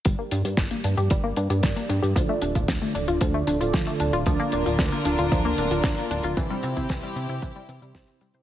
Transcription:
<<
  \new Staff \with { instrumentName = "Analog polysynth" } { \time 4/4 \key g \dorian \tempo 4 = 114 <g d' bes' d''>2~ <g d' bes' d''>8. <g d' g' d''>4~ <g d' g' d''>16 | <d d' f' a' d''>2~ <d d' f' a' d''>8. <d d' f' a' d''>4~ <d d' f' a' d''>16 | <d d' f' bes' d''>2~ <d d' f' bes' d''>8. <d d' f' bes' d''>4~ <d d' f' bes' d''>16 | r2 r8. <c c' e' g' c''>4~ <c c' e' g' c''>16 | }
  \new Staff \with { instrumentName = "String section" } { \time 4/4 \key g \dorian r1 | r1 | <d d' f' bes'>1 | <c' e' g'>1 | }
  \new Staff \with { instrumentName = "Synth arpeggio sound" } { \time 4/4 \key g \dorian g16 bes16 d'16 g'16 g16 bes16 d'16 g'16 g16 bes16 d'16 g'16 g16 bes16 d'16 g'16 | f16 a16 d'16 f'16 f16 a16 d'16 f'16 f16 a16 d'16 f'16 f16 a16 d'16 f'16 | f16 bes16 d'16 f'16 f16 bes16 d'16 f'16 f16 bes16 d'16 f'16 f16 bes16 d'16 f'16 | e16 g16 c'16 e'16 e16 g16 c'16 e'16 e16 g16 e16 g16 c'16 c'16 g16 c''16 | }
  \new Staff \with { instrumentName = "Analog synth bass" } { \clef bass \time 4/4 \key g \dorian g,,16 r16 g,16 g,16 g,,16 r16 g,16 g,16 g,,8 g,16 g,16 g,,16 r16 g,16 g,16 | d,16 r16 d,,16 d,,16 d,16 r16 d,,16 d,,16 d,8 d,,16 d,,16 d,16 r16 d,,16 d,,16 | d,16 r16 d,,16 d,,16 d,16 r16 d,,16 d,,16 d,8 d,,16 d,,16 d,16 r16 d,,16 d,,16 | c,16 r16 c16 c16 c,16 r16 c16 c16 c,16 r16 c16 c16 c,16 r16 c16 c16 | }
  \new DrumStaff \with { instrumentName = "Drums" } \drummode { \time 4/4 <hh bd>8 hh16 hh16 <hh bd sn>16 hh16 hh16 hh16 <hh bd>8 hh16 hh16 <hh bd sn>16 hh16 hh16 hh16 | <hh bd>8 hh16 <hh bd>16 <hh bd sn>16 hh16 hh16 hh16 <hh bd>8 hh16 hh16 <hh bd sn>16 hh16 hh16 hh16 | <hh bd>8 hh16 hh16 <hh bd sn>16 hh16 hh16 hh16 <hh bd>8 hh16 hh16 <hh bd sn>16 hh16 hh16 hh16 | <hh bd>8 hh16 <hh bd>16 <hh bd sn>16 hh16 hh16 hh16 <hh bd>8 hh16 hh16 <hh bd sn>16 hh16 hh16 hh16 | }
>>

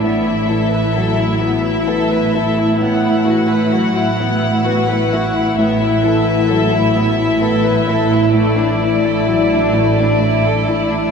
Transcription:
<<
  \new Staff \with { instrumentName = "Violin section" } { \time 3/4 \key d \lydian \tempo 4 = 65 e''2. | fis''2. | e''2. | d''2. | }
  \new Staff \with { instrumentName = "Viola section" } { \time 3/4 \key d \lydian e'2.~ | e'2. | e'2.~ | e'2. | }
  \new Staff \with { instrumentName = "Violin section" } { \time 3/4 \key d \lydian b16 e'16 a'16 b'16 a'16 e'16 b16 e'16 a'16 b'16 a'16 e'16 | b16 e'16 fis'16 b'16 fis'16 e'16 b16 e'16 fis'16 b'16 fis'16 e'16 | b16 e'16 a'16 b'16 a'16 e'16 b16 e'16 a'16 b'16 a'16 e'16 | a16 d'16 e'16 a'16 e'16 d'16 a16 d'16 e'16 a'16 e'16 d'16 | }
  \new Staff \with { instrumentName = "Grand piano" } { \clef bass \time 3/4 \key d \lydian a,8 e8 fis8 e8 b8 e'8 | a,8 e8 fis8 e8 b8 e'8 | a,8 e8 fis8 e8 b8 e'8 | a,8 e8 fis8 e8 d'8 e'8 | }
  \new Staff \with { instrumentName = "Cello section" } { \clef bass \time 3/4 \key d \lydian a,2.~ | a,2. | a,2.~ | a,2. | }
  \new Staff \with { instrumentName = "Double bass section" } { \clef bass \time 3/4 \key d \lydian a,,2.~ | a,,2. | a,,2.~ | a,,2. | }
>>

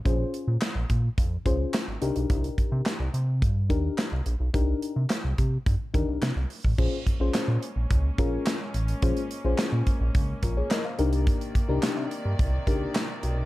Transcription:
<<
  \new Staff \with { instrumentName = "FM electric piano" } { \time 4/4 \key bes \dorian \tempo 4 = 107 << { r1 | r1 | r1 | r1 |
r2 r8 <f' bes'>16 <aes' des''>16 <bes' ees''>16 <c'' f''>8 r16 | r1 | } \\ { <des' f' aes' c''>8. r4. r16 <des' f' aes' c''>8. r16 <d' ees' g' bes'>8~ | <d' ees' g' bes'>4 r4. <d' ees' g' bes'>8. r8. | <d' ees' g' bes'>8. r4. r16 <d' ees' g' bes'>8. r8. | <des' f' aes' c''>16 r8 <des' f' aes' c''>8. r4 <des' f' aes' bes'>8. r8. |
<des' f' aes' c''>16 r8 <des' f' aes' c''>8. r2 <d' ees' g' bes'>8~ | <d' ees' g' bes'>8 r16 <d' ees' g' bes'>8. r4 <d' ees' g' bes'>8. r8. | } >> }
  \new Staff \with { instrumentName = "String section" } { \time 4/4 \key bes \dorian r1 | r1 | r1 | <aes bes des'>1~ |
<aes bes des'>2.~ <aes bes des'>8 <c ees d''>8~ | <c ees d''>1 | }
  \new Staff \with { instrumentName = "Analog synth bass" } { \clef bass \time 4/4 \key bes \dorian bes,,8 r16 bes,16 r16 bes,,16 bes,8 f,8 des,8 r16 aes,,16 c,16 ces,16 | c,8 r16 c16 r16 c,16 c8 g,8 ees,8 r16 c,16 bes,,16 ces,16 | c,8 r16 c16 r16 c,16 c8 g,16 r16 ees,16 c,16 c16 c,16 r16 a,,16 | bes,,16 r8 bes,,16 bes,16 bes,16 r16 bes,,16 des,8 bes,,8 r8 a,,8 |
bes,,16 r8 bes,,16 bes,16 bes,16 r16 bes,,16 des,8 bes,,8 r8 c,8~ | c,16 r8 c,16 c16 c16 r16 g,16 c,8 des,8 r8 ces,8 | }
  \new DrumStaff \with { instrumentName = "Drums" } \drummode { \time 4/4 <hh bd>8 hh8 <hc hh sn>8 <hh bd>8 <hh bd>8 <hh bd>8 <hc hh sn>8 hh16 hh16 | <hh bd>16 hh16 <hh bd>8 <hc hh sn>8 hh8 <hh bd>8 <hh bd>8 <hc hh sn>8 hh8 | <hh bd>8 hh8 <hc hh sn>8 <hh bd>8 <hh bd>8 <hh bd>8 <hc hh sn>8 hho16 bd16 | <cymc bd>8 <hh bd>8 <hc hh sn>8 hh8 <hh bd>8 <hh bd>8 <hc hh sn>8 hh16 hh16 |
<hh bd>16 hh16 hh8 <hc hh sn>8 <hh bd>8 <hh bd>8 <hh bd>8 <hc hh sn>8 hh16 hh16 | <hh bd>16 hh16 <hh bd>8 <hc hh sn>8 hh8 <hh bd>8 <hh bd>8 <hc hh sn>8 hh8 | }
>>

